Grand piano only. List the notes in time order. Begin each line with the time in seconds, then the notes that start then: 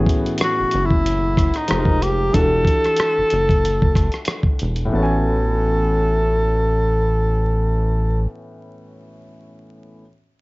Already playing: A2 E3 B3 C#4 F#4 G#4
1.68 F3 G#3 D#4 G4
1.72 A4
1.79 A#4
2.31 E3 D4
2.35 F#4 G4
2.40 A4
4.85 A2 E3
4.92 B3 C#4
4.99 F#4 G#5